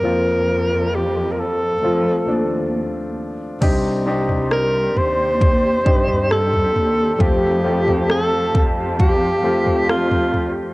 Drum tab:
CC |----------------|x---------------|----------------|
SD |----------------|----r-------r---|----r-------r---|
FT |----------------|o--o--o-o--o-oo-|o--o--o-o--o-oo-|
BD |----------------|o-------o-o-----|o-----o-o-------|